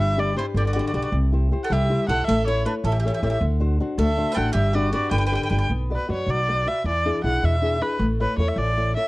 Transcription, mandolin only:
0, 0, Header, 1, 2, 480
1, 0, Start_track
1, 0, Key_signature, 1, "major"
1, 0, Tempo, 382409
1, 1413, Time_signature, 6, 3, 24, 8
1, 7166, Key_signature, 2, "minor"
1, 11395, End_track
2, 0, Start_track
2, 0, Title_t, "Mandolin"
2, 0, Program_c, 0, 25
2, 486, Note_on_c, 0, 64, 59
2, 548, Note_off_c, 0, 64, 0
2, 718, Note_on_c, 0, 67, 58
2, 796, Note_off_c, 0, 67, 0
2, 844, Note_on_c, 0, 66, 39
2, 903, Note_off_c, 0, 66, 0
2, 918, Note_on_c, 0, 66, 59
2, 978, Note_off_c, 0, 66, 0
2, 993, Note_on_c, 0, 66, 46
2, 1075, Note_off_c, 0, 66, 0
2, 1097, Note_on_c, 0, 66, 45
2, 1166, Note_off_c, 0, 66, 0
2, 1181, Note_on_c, 0, 66, 41
2, 1263, Note_off_c, 0, 66, 0
2, 1285, Note_on_c, 0, 66, 50
2, 1362, Note_off_c, 0, 66, 0
2, 2063, Note_on_c, 0, 69, 61
2, 2168, Note_off_c, 0, 69, 0
2, 2168, Note_on_c, 0, 67, 75
2, 2627, Note_on_c, 0, 69, 74
2, 2636, Note_off_c, 0, 67, 0
2, 2843, Note_off_c, 0, 69, 0
2, 2871, Note_on_c, 0, 69, 89
2, 3093, Note_off_c, 0, 69, 0
2, 3110, Note_on_c, 0, 64, 66
2, 3324, Note_off_c, 0, 64, 0
2, 3339, Note_on_c, 0, 62, 64
2, 3402, Note_off_c, 0, 62, 0
2, 3572, Note_on_c, 0, 69, 69
2, 3661, Note_off_c, 0, 69, 0
2, 3664, Note_on_c, 0, 67, 53
2, 3747, Note_off_c, 0, 67, 0
2, 3762, Note_on_c, 0, 67, 67
2, 3846, Note_off_c, 0, 67, 0
2, 3861, Note_on_c, 0, 67, 49
2, 3931, Note_off_c, 0, 67, 0
2, 3946, Note_on_c, 0, 67, 50
2, 4034, Note_off_c, 0, 67, 0
2, 4058, Note_on_c, 0, 67, 39
2, 4126, Note_off_c, 0, 67, 0
2, 4141, Note_on_c, 0, 67, 51
2, 4224, Note_off_c, 0, 67, 0
2, 5002, Note_on_c, 0, 69, 77
2, 5420, Note_off_c, 0, 69, 0
2, 5420, Note_on_c, 0, 71, 53
2, 5455, Note_on_c, 0, 69, 71
2, 5478, Note_off_c, 0, 71, 0
2, 5678, Note_off_c, 0, 69, 0
2, 5683, Note_on_c, 0, 67, 91
2, 5938, Note_off_c, 0, 67, 0
2, 5938, Note_on_c, 0, 66, 74
2, 6169, Note_off_c, 0, 66, 0
2, 6184, Note_on_c, 0, 66, 65
2, 6413, Note_off_c, 0, 66, 0
2, 6417, Note_on_c, 0, 71, 72
2, 6488, Note_off_c, 0, 71, 0
2, 6503, Note_on_c, 0, 71, 58
2, 6595, Note_off_c, 0, 71, 0
2, 6610, Note_on_c, 0, 71, 67
2, 6705, Note_off_c, 0, 71, 0
2, 6720, Note_on_c, 0, 71, 57
2, 6804, Note_off_c, 0, 71, 0
2, 6820, Note_on_c, 0, 71, 53
2, 6883, Note_off_c, 0, 71, 0
2, 6898, Note_on_c, 0, 71, 48
2, 6996, Note_off_c, 0, 71, 0
2, 7013, Note_on_c, 0, 71, 59
2, 7100, Note_off_c, 0, 71, 0
2, 11395, End_track
0, 0, End_of_file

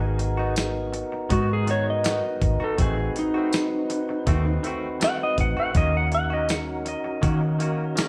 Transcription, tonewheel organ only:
0, 0, Header, 1, 2, 480
1, 0, Start_track
1, 0, Tempo, 740741
1, 1807, Time_signature, 4, 2, 24, 8
1, 5238, End_track
2, 0, Start_track
2, 0, Title_t, "Tonewheel organ"
2, 0, Program_c, 0, 16
2, 0, Note_on_c, 0, 59, 63
2, 0, Note_on_c, 0, 63, 56
2, 0, Note_on_c, 0, 66, 56
2, 0, Note_on_c, 0, 70, 66
2, 1778, Note_off_c, 0, 59, 0
2, 1781, Note_off_c, 0, 63, 0
2, 1782, Note_off_c, 0, 66, 0
2, 1786, Note_off_c, 0, 70, 0
2, 1799, Note_on_c, 0, 60, 60
2, 1803, Note_on_c, 0, 63, 55
2, 1806, Note_on_c, 0, 66, 56
2, 1812, Note_on_c, 0, 71, 69
2, 3697, Note_off_c, 0, 60, 0
2, 3699, Note_off_c, 0, 63, 0
2, 3700, Note_off_c, 0, 66, 0
2, 3703, Note_off_c, 0, 71, 0
2, 3722, Note_on_c, 0, 61, 61
2, 3723, Note_on_c, 0, 63, 56
2, 3730, Note_on_c, 0, 66, 55
2, 3734, Note_on_c, 0, 70, 71
2, 5238, Note_off_c, 0, 61, 0
2, 5238, Note_off_c, 0, 63, 0
2, 5238, Note_off_c, 0, 66, 0
2, 5238, Note_off_c, 0, 70, 0
2, 5238, End_track
0, 0, End_of_file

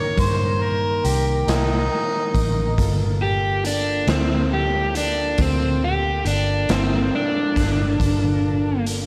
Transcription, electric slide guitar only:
0, 0, Header, 1, 2, 480
1, 0, Start_track
1, 0, Key_signature, -2, "minor"
1, 0, Tempo, 869565
1, 1538, Time_signature, 12, 3, 24, 8
1, 5002, End_track
2, 0, Start_track
2, 0, Title_t, "Electric slide guitar"
2, 0, Program_c, 0, 29
2, 1779, Note_on_c, 0, 67, 91
2, 2011, Note_off_c, 0, 67, 0
2, 2023, Note_on_c, 0, 62, 76
2, 2253, Note_on_c, 0, 60, 58
2, 2254, Note_off_c, 0, 62, 0
2, 2488, Note_off_c, 0, 60, 0
2, 2502, Note_on_c, 0, 67, 77
2, 2733, Note_off_c, 0, 67, 0
2, 2744, Note_on_c, 0, 62, 73
2, 2975, Note_off_c, 0, 62, 0
2, 2986, Note_on_c, 0, 60, 74
2, 3215, Note_off_c, 0, 60, 0
2, 3226, Note_on_c, 0, 67, 83
2, 3455, Note_off_c, 0, 67, 0
2, 3463, Note_on_c, 0, 62, 80
2, 3693, Note_off_c, 0, 62, 0
2, 3708, Note_on_c, 0, 60, 68
2, 3936, Note_off_c, 0, 60, 0
2, 3946, Note_on_c, 0, 62, 74
2, 4880, Note_off_c, 0, 62, 0
2, 5002, End_track
0, 0, End_of_file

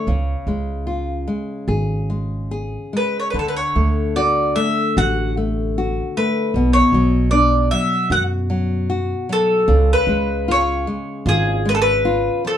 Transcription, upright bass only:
0, 0, Header, 1, 2, 480
1, 0, Start_track
1, 0, Tempo, 813008
1, 45, Time_signature, 4, 2, 24, 8
1, 3405, Tempo, 785340
1, 7566, End_track
2, 0, Start_track
2, 0, Title_t, "Upright bass"
2, 0, Program_c, 0, 32
2, 42, Note_on_c, 0, 37, 84
2, 197, Note_off_c, 0, 37, 0
2, 276, Note_on_c, 0, 37, 77
2, 740, Note_off_c, 0, 37, 0
2, 990, Note_on_c, 0, 32, 94
2, 1629, Note_off_c, 0, 32, 0
2, 1970, Note_on_c, 0, 38, 77
2, 2128, Note_off_c, 0, 38, 0
2, 2218, Note_on_c, 0, 38, 74
2, 2681, Note_off_c, 0, 38, 0
2, 2933, Note_on_c, 0, 33, 100
2, 3543, Note_off_c, 0, 33, 0
2, 3878, Note_on_c, 0, 35, 84
2, 4033, Note_off_c, 0, 35, 0
2, 4113, Note_on_c, 0, 35, 80
2, 4581, Note_off_c, 0, 35, 0
2, 4831, Note_on_c, 0, 42, 99
2, 5456, Note_off_c, 0, 42, 0
2, 5795, Note_on_c, 0, 37, 91
2, 5952, Note_off_c, 0, 37, 0
2, 6035, Note_on_c, 0, 37, 87
2, 6506, Note_off_c, 0, 37, 0
2, 6760, Note_on_c, 0, 32, 107
2, 7387, Note_off_c, 0, 32, 0
2, 7566, End_track
0, 0, End_of_file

